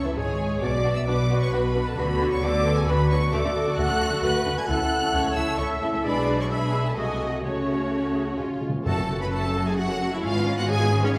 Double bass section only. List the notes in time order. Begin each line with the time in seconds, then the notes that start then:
0.17 G#1
0.62 B1
1.07 B1
1.52 B1
1.98 D2
2.43 D2
2.88 D2
3.33 D2
3.78 D2
4.01 D2
4.23 D2
4.45 D2
4.69 C#2
5.14 C#2
5.36 C#2
5.59 C#2
5.82 C#2
6.04 B1
6.97 C2
7.44 C#2
8.38 C#2
8.85 F#1
10.24 G#1